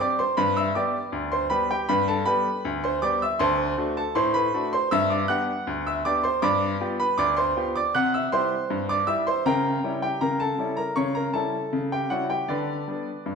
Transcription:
0.00 G3 C4 G4 D5 D6
0.19 C5 C6
0.37 G2 B4 B5
0.57 E5 E6
0.75 G3 B3 G4 D5 D6
1.12 D2
1.32 C5 C6
1.50 G3 B3 G4 B4 B5
1.71 G4 G5
1.89 G2 B4 B5
2.08 A4 A5
2.25 G3 B3 G4 B4 B5
2.65 D2
2.84 C5 C6
3.02 G3 B3 G4 D5 D6
3.22 E5 E6
3.39 D2 C5 A5 C6
3.78 A3 D4 F#4
3.97 A4 A5
4.15 A2 C5 C6
4.34 B4 B5
4.54 A3 D4 F#4
4.73 C5 C6
4.91 G2 E5 E6
5.10 D5 D6
5.28 B3 D4 G4 F#5 F#6
5.67 D2
5.87 E5 E6
6.05 B3 D4 G4 D5 D6
6.24 C5 C6
6.42 G2 D5 B5 D6
6.81 B3 F4 G4
7.00 B4 B5
7.18 D2 D5 D6
7.37 C5 C6
7.57 B3 F4 G4
7.76 D5 D6
7.95 C3 F#5 F#6
8.14 E5 E6
8.32 G3 E4 G4 C5 C6
8.70 G2
8.89 D5 D6
9.07 G3 E4 G4 E5 E6
9.27 C5 C6
9.46 C#3 A#4 G5 A#5
9.84 G3 C#4 E4
10.02 G4 G5
10.21 C#3 A#4 A#5
10.40 A4 A5
10.58 G3 C#4 E4
10.77 A#4 A#5
10.96 C#3 C#5 C#6
11.15 A#4 A#5
11.34 G3 C#4 E4 A4 A5
11.73 C#3
11.92 G4 G5
12.10 G3 C#4 E4 F#4 F#5
12.30 G4 G5
12.48 D3 D4 B4 D5
12.88 G3 B3 D4
13.26 G2

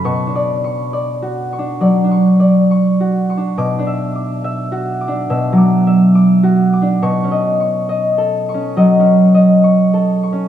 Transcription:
Already playing: C#4 C#5 B5
0.04 B2 C#6
0.27 D4
0.36 D5
0.64 C#6
0.93 D5
1.22 F#4
1.53 C#6
1.59 D4
1.81 F#3 D5
2.04 D4
2.11 C#6
2.40 D5
2.71 C#6
3.00 F#4
3.30 C#6
3.37 D4
3.58 B2 D6
3.79 D4
3.87 E5
4.16 D6
4.44 E5
4.72 F#4
5.01 D6
5.08 D4
5.30 B2 E5
5.53 F#3
5.58 D6
5.87 E5
6.15 D6
6.43 F#4
6.73 D6
6.82 D4
7.02 B2 C#6
7.24 C#4
7.31 D#5
7.60 C#6
7.89 D#5
8.18 A4
8.49 C#6
8.54 C#4
8.77 F#3 D#5
9.00 C#4
9.06 C#6
9.34 D#5
9.64 C#6
9.94 A4
10.23 C#6
10.32 C#4

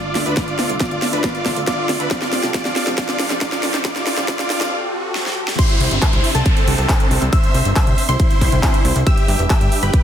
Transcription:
Already playing: D3 D4 F4 D5 E5, riser
0.15 D2, snare, open hi-hat
0.26 D2 D4 B4, closed hi-hat
0.37 F4 D5, kick, snare, closed hi-hat
0.48 closed hi-hat
0.59 D2, snare, open hi-hat
0.70 C2, closed hi-hat
0.80 F4 D5, kick, snare, closed hi-hat
0.91 D2, closed hi-hat
1.02 snare, open hi-hat
1.13 D2 D4 B4, closed hi-hat
1.24 F4 D5, kick, snare, closed hi-hat
1.35 closed hi-hat
1.46 D2, kick, snare, open hi-hat
1.56 D2, closed hi-hat
1.67 F4 D5, kick, snare, closed hi-hat
1.89 D2, snare, open hi-hat
2.00 D2 D4 B4, closed hi-hat
2.11 F3 C4 F4 G4 A4 D5, kick, snare, closed hi-hat
2.22 snare, closed hi-hat
2.33 F1, snare, open hi-hat
2.43 C2, snare, closed hi-hat
2.54 F4 D5, kick, snare, closed hi-hat
2.65 F1, snare, closed hi-hat
2.76 snare, open hi-hat
2.87 F1, snare, closed hi-hat
2.98 F4 D5, kick, snare, closed hi-hat
3.09 snare, closed hi-hat
3.19 F1, snare, open hi-hat
3.30 F1, snare, closed hi-hat
3.41 F4 D5, kick, snare, closed hi-hat
3.52 snare
3.63 F1, snare, open hi-hat
3.74 F1, snare, closed hi-hat
3.85 F4 D5, kick, snare, closed hi-hat
3.96 snare, closed hi-hat
4.07 F1 F4 D5, snare, open hi-hat
4.17 C2, snare, closed hi-hat
4.28 F4 D5, kick, snare, closed hi-hat
4.39 F1, snare, closed hi-hat
4.50 F4 D5, snare, open hi-hat
4.61 F1, snare, closed hi-hat
5.15 snare
5.26 snare
5.48 snare
5.59 C3 C4 D4 E4 C5 E5 C6, kick, closed hi-hat, crash, downlifter
5.70 closed hi-hat
5.80 C2, open hi-hat
5.91 G1, closed hi-hat
6.02 E4 C5 C6, kick, clap, closed hi-hat
6.13 C2, closed hi-hat
6.24 open hi-hat
6.35 C2 C4 A4 A5, closed hi-hat
6.46 kick, closed hi-hat
6.57 closed hi-hat
6.67 C2, open hi-hat
6.78 C2, closed hi-hat
6.89 kick, clap, closed hi-hat
7.00 closed hi-hat
7.11 C2, open hi-hat
7.22 C2, closed hi-hat
7.33 C5 E5 E6, kick, closed hi-hat
7.44 closed hi-hat
7.54 C2, open hi-hat
7.65 G1, closed hi-hat
7.76 C5 E5 E6, kick, clap, closed hi-hat
7.87 C2, closed hi-hat
7.98 open hi-hat
8.09 C2 E4 C5 C6, closed hi-hat
8.20 kick, closed hi-hat
8.31 closed hi-hat
8.41 C2, kick, open hi-hat
8.52 C2, closed hi-hat
8.63 kick, clap, closed hi-hat
8.74 closed hi-hat
8.85 C2, open hi-hat
8.96 C2, closed hi-hat
9.06 G3 G4 B4 E5 E6, kick, closed hi-hat
9.18 closed hi-hat
9.28 G1, open hi-hat
9.39 E1, closed hi-hat
9.50 G4 E5 E6, kick, clap, closed hi-hat
9.61 G1, closed hi-hat
9.72 open hi-hat
9.83 G1 G4 B4 B5, closed hi-hat
9.94 kick, closed hi-hat

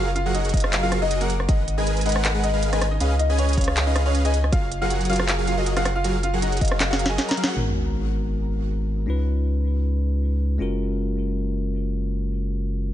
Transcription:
Already playing: F#1 F4 F5
0.15 F4 F5, closed hi-hat
0.26 F#3 F#4 G#4 A#4 F#5
0.34 D#4 D#5, closed hi-hat
0.45 closed hi-hat
0.49 closed hi-hat
0.54 F#3 D#4 F#4 A#4 D#5 F5, kick, closed hi-hat
0.57 closed hi-hat
0.60 cross-stick, closed hi-hat
0.73 clap, closed hi-hat
0.83 F#3 F4 F#4 G#4 A#4 F5
0.92 cross-stick, closed hi-hat
1.02 F#3 D#4 F#4 G#4 A#4 D#5
1.11 closed hi-hat
1.20 F#3 A#3 F#4 G#4 A#4 F#5, closed hi-hat
1.30 closed hi-hat
1.40 cross-stick
1.49 G#1 G#3 D#4 G#4 A#4 B4 D#5 F#5, kick, closed hi-hat
1.68 closed hi-hat
1.77 G#3 D#4 G#4 A#4 B4 D#5 G#5
1.87 closed hi-hat
1.97 closed hi-hat
2.01 closed hi-hat
2.06 G#3 D#4 G#4 A#4 B4 D#5 F#5, closed hi-hat
2.09 closed hi-hat
2.12 cross-stick, closed hi-hat
2.25 clap, closed hi-hat
2.35 G#3 G#4 A#4 B4 F#5
2.43 D#4 D#5, closed hi-hat
2.54 G#3 G#4 A#4 B4 F5
2.63 closed hi-hat
2.72 G#3 D#4 G#4 A#4 B4 D#5 G#5, cross-stick, closed hi-hat
2.82 cross-stick, closed hi-hat
2.91 D#4 D#5
3.00 C#2 C#4 G#4 B4 D#5 F5, closed hi-hat
3.19 D#4 D#5, closed hi-hat
3.30 C#4 G#4 B4 D#5 G#5
3.38 C#4 C#5, closed hi-hat
3.49 closed hi-hat
3.53 closed hi-hat
3.57 C#4 G#4 B4 C#5 D#5 F5, kick, closed hi-hat
3.61 closed hi-hat
3.64 cross-stick, closed hi-hat
3.77 clap, closed hi-hat
3.86 C#4 D#4 G#4 B4 D#5 F5
3.96 cross-stick, closed hi-hat
4.06 C#4 G#4 B4 C#5 D#5 F5
4.15 closed hi-hat
4.25 C#4 D#4 G#4 B4 D#5 G#5, closed hi-hat
4.34 closed hi-hat
4.44 cross-stick
4.52 F#1 F#3 F4 F#4 G#4 A#4 F5, kick, closed hi-hat
4.72 closed hi-hat
4.81 F#3 F4 F#4 G#4 A#4 F5 F#5
4.90 closed hi-hat
5.01 closed hi-hat
5.05 closed hi-hat
5.09 F#3 F4 F#4 G#4 A#4 F5, closed hi-hat
5.13 closed hi-hat
5.16 cross-stick, closed hi-hat
5.28 clap, closed hi-hat
5.38 F#3 F#4 G#4 A#4 F5
5.47 F4 F5, closed hi-hat
5.57 F#3 F#4 G#4 A#4 D#5
5.66 closed hi-hat
5.76 F#3 F4 F#4 G#4 A#4 F5 F#5, cross-stick, closed hi-hat
5.85 cross-stick, closed hi-hat
5.96 F4 F5
6.04 F#3 F#4 G#4 A#4 F5, closed hi-hat
6.23 F4 F5, closed hi-hat
6.33 F#3 F#4 G#4 A#4 F#5
6.42 D#4 D#5, closed hi-hat
6.52 closed hi-hat
6.57 closed hi-hat
6.61 F#3 D#4 F#4 G#4 A#4 D#5 F5, kick, closed hi-hat
6.65 closed hi-hat
6.68 cross-stick, closed hi-hat
6.80 snare, clap, closed hi-hat
6.90 F#3 F#4 G#4 A#4 F5 F#5, snare
6.99 closed hi-hat
7.06 F#3 F#4 G#4 A#4 D#5 G#5, snare
7.18 snare, closed hi-hat
7.29 A#4 A#5, snare, closed hi-hat
7.37 F#3 F#4 G#4 A#4 F5, closed hi-hat
7.44 F#3 F#4 G#4 A#4 F#5, snare
7.54 G#1 G#3 B3 D#4 F#4 A#4, sub drop
9.06 C#2 G#3 C#4 D#4 F4
9.10 B4
10.58 F#1 G#3 C#4 F4 F#4
10.62 A#4

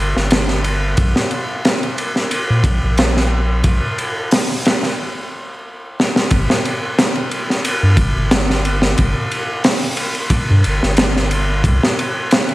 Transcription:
0.00 G1
0.16 G1, snare
0.31 snare, ride
0.48 snare
0.64 ride
0.97 A#1, kick, ride
1.16 snare
1.31 ride
1.65 snare, ride
1.83 ride
1.98 ride
2.16 snare
2.31 ride
2.50 A#2
2.64 A#1, kick, ride
2.84 A#1
2.97 snare, ride
3.17 snare
3.64 A#1, kick, ride
3.98 ride
4.31 snare, open hi-hat
4.65 snare, ride
4.83 snare
6.00 snare
6.16 snare
6.30 G1, kick, ride
6.50 snare
6.65 ride
6.99 snare, ride
7.15 ride
7.31 ride
7.50 snare
7.65 ride
7.83 G2
7.97 G1, kick, ride
8.16 G1
8.31 snare, ride
8.50 snare
8.65 ride
8.82 snare
8.97 G1, kick, ride
9.31 ride
9.64 snare, open hi-hat
9.97 ride
10.15 ride
10.30 kick, ride
10.50 G2
10.64 G1, ride
10.83 G1, snare
10.97 snare, ride
11.17 snare
11.31 ride
11.64 C2, kick, ride
11.83 snare
11.99 ride
12.31 snare, ride
12.49 ride

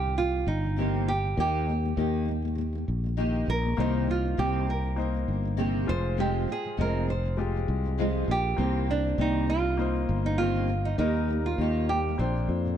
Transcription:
Already playing: C2 G4
0.04 C3 D#3
0.17 C3 D#3 F4
0.34 C3 D#3
0.47 G1 D#4
0.64 C3 D#3
0.77 C3 D#3 A#3 C4 G4
1.08 C3 D#3 G4
1.24 C3 D#3
1.37 D#2 D#3 A#3 D#4 G4
1.67 D#3 A#3
1.83 D#3 A#3
1.97 D#2 D#3 A#3 D#4 G4
2.25 D#3 A#3
2.42 D#3 A#3
2.55 D#3 A#3
2.73 D#3 A#3
2.88 A#1
3.04 D#3 A#3
3.17 D#3 A#3 D#4 G4
3.47 A#1 D#3 A#4
3.63 D#3 A#3
3.76 C2 C3 D#3 A#3 C4 D#4 G4 C5
4.07 C3 D#3 F4
4.23 C3 D#3
4.37 C2 C3 D#3 A#3 C4 G4
4.67 C3 D#3 A#4
4.83 C3 D#3
4.96 C3 D#3 A#3 D#4 C5
5.14 C3 D#3
5.28 G1
5.43 C3 D#3
5.57 C3 D#3 A#3 C4 G4
5.86 F1 F2 C3 F3 G#3 F4 C5
6.17 F2 C3 F3 G#3 C4 F4 G4
6.47 F2 C3 F3
6.52 G#4
6.63 F2 C3 F3
6.77 F1 F2 C3 F3 G#3 C4 F4 A#4
7.07 F2 C3 F3 C5
7.23 F2 C3 F3
7.37 F2 C3 F3 G#3 F4 G4
7.54 F2 C3 F3
7.68 C2
7.84 F2 C3 F3
7.98 F2 C3 F3 G#3 C4 F4
8.27 A#1 F2 C3 F3 G4
8.56 C2 C3 D#3 A#3 C4 G4 C5
8.87 C3 D#3 D4
9.04 C3 D#3
9.18 C2 C3 D#3 A#3 C4 D#4 G4
9.47 C3 D#3 F4
9.64 C3 D#3
9.77 C3 D#3 A#3 D#4 C5
9.94 C3 D#3
10.09 G1
10.24 C3 D#3 D#4
10.38 C3 D#3 A#3 C4 F4 G4
10.68 C3 D#3
10.85 C3 D#3 D#4
10.98 D#2 D#3 G3 A#3 D#4 G4 A#4
11.28 D#3 A#3
11.45 D#3 A#3 F4
11.58 D#2 D#3 A#3 D#4 G4
11.89 D#3 A#3 G4
12.06 D#3 A#3
12.18 A#1 A#2 D3 F3 A#3 C4 D4 C5
12.36 A#2 D3 F3
12.48 F2
12.65 A#2 D3 F3

